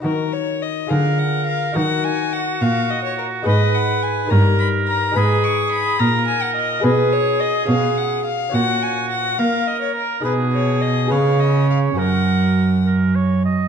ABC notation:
X:1
M:6/8
L:1/16
Q:3/8=70
K:Ebm
V:1 name="Violin"
B2 d2 e2 f2 g2 f2 | g2 a2 g2 f2 e d B2 | e2 g2 a2 b2 c'2 b2 | c'2 d'2 c'2 b2 a g e2 |
[K:F#] B2 c2 d2 e2 f2 e2 | f2 g2 f2 e2 d c A2 | B2 c2 d2 e2 d2 e2 | f6 z6 |]
V:2 name="Oboe"
z6 B6 | G12 | c6 B6 | A6 B6 |
[K:F#] G8- G2 z2 | F6 A6 | G6 c6 | A6 A2 c2 d2 |]
V:3 name="Lute"
[EGB]6 [FAB]6 | [EGB]12 | [EAc]6 [EBd]6 | [EAc]12 |
[K:F#] [DGB]6 [CGc]6 | [CFc]12 | [DGB]6 [CGB]6 | [CFA]12 |]
V:4 name="Lute" clef=bass
E,6 =D,6 | E,6 B,,6 | A,,6 =G,,6 | A,,6 B,,6 |
[K:F#] B,,6 B,,6 | A,,6 A,6 | B,,6 C,6 | F,,8- F,,2 z2 |]
V:5 name="Cello" clef=bass
E,6 =D,6 | E,6 B,,6 | A,,6 =G,,6 | A,,6 B,,6 |
[K:F#] B,,6 B,,6 | A,,6 A,6 | B,,6 C,6 | F,,8- F,,2 z2 |]